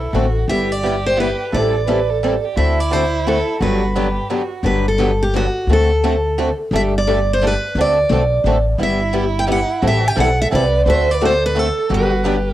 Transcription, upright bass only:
0.13 A1
0.48 G1
1.53 A1
2.57 D2
3.61 G1
4.63 G1
5.67 D2
6.71 G1
7.75 D2
8.10 B1
8.44 A1
8.78 G1
9.83 A1
10.17 B1
10.52 C2
10.86 D2
11.90 G1

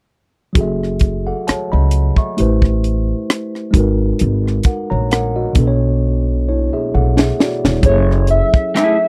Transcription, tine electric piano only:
0.53 F#3 F#4 G#4
0.59 A4 E5
1.27 A4 F#5
1.47 C#5 A5
1.72 D#5 B5
2.18 E5 C#6
2.37 A3 E4 G4 B4 C5
3.71 G#3 D#4
3.75 F#4 A#4 B4
4.66 A#4 F#5
4.90 C#5 A#5
5.12 A#4 F#5
5.36 F#4 D#5
5.53 B2 B3 D4
5.59 A4 B4
5.67 C#5
6.49 E4 C#5
6.73 G#4 E5
6.95 A4 F#5
7.19 G#4 E5
7.40 F#4 D5
7.64 E4 C#5
7.81 F#3 C#4
7.85 G#4 A4 E5

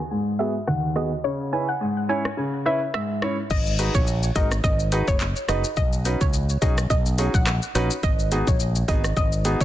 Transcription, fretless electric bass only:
3.51 G#1
3.95 A#1
4.36 G#1
4.64 G#1
5.08 F#1
5.49 F#1
5.77 B1
6.21 C#2
6.62 B1
6.90 B1
7.34 A#1
7.75 A#1
8.03 G#1
8.47 A#1
8.88 G#1
9.17 G#1
9.61 F#1

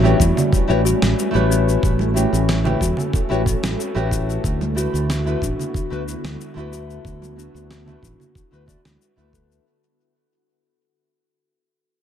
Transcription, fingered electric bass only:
Already playing: A1
0.20 E2
0.69 A1
1.02 A1
1.35 A1
1.83 A1
2.33 A1
2.81 E2
3.31 A1
3.63 A1
3.96 A1
4.44 D2
4.94 D2
5.42 A1
5.91 D2
6.24 D2
6.56 D2
7.05 D2
7.54 D2
8.02 A1
8.53 D2
8.85 D2
9.17 D2

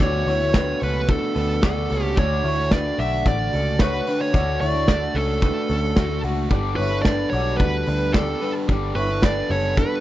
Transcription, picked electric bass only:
0.00 D2
0.26 D2
0.82 C#2
1.36 D2
1.64 D2
1.91 C#2
2.18 D2
2.44 D2
2.99 B1
3.26 A1
3.54 C#2
4.34 D2
4.62 D2
5.14 C#2
5.70 D2
5.97 D2
6.23 C#2
6.51 G1
6.78 G1
7.33 B1
7.59 D2
7.88 D2
8.69 G1
8.95 G1
9.50 F#1

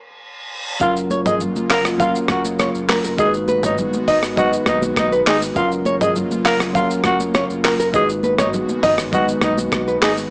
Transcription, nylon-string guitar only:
0.81 F5
1.11 C#5
1.26 D#5
1.70 F5
2.00 F5
2.59 C#5
2.89 A#4
3.05 A#4
3.19 D#5
3.49 B4
3.64 C#5
4.08 D#5
4.37 D#5
5.12 B4
5.27 G#4
5.56 F5
5.86 C#5
6.01 D#5
6.45 F5
6.75 F5
7.34 C#5
7.64 A#4
7.80 A#4
7.94 D#5
8.24 B4
8.39 C#5
8.83 D#5
9.13 D#5
9.88 B4
10.02 G#4

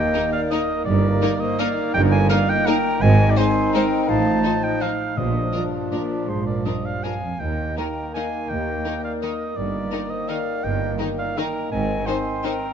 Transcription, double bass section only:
0.86 G1
1.94 G1
3.02 G#1
4.09 A1
5.17 A#1
6.28 A#1
7.40 D#2
8.49 D#2
9.57 G1
10.64 G1
11.71 G#1

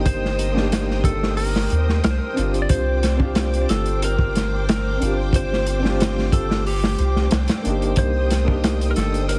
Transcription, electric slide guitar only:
0.06 C5
1.05 A4
1.37 A#4
2.05 A#4
2.10 C5
2.18 A#4
2.62 D5
2.70 C5
3.70 A4
4.04 A#4
4.70 A#4
5.36 C5
6.33 A4
6.67 G4
7.98 C5
8.91 A#4
8.96 A4
9.29 A#4

